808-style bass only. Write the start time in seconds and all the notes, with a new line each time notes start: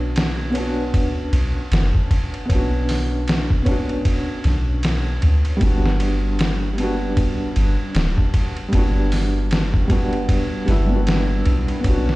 Already playing: B1
0.94 D2
1.33 B1
1.72 F#1
2.50 B1
4.45 B1
5.23 D2
5.61 G1
7.17 B1
7.56 G1
7.95 D1
8.73 G1
10.68 G1
11.46 B1
11.85 B1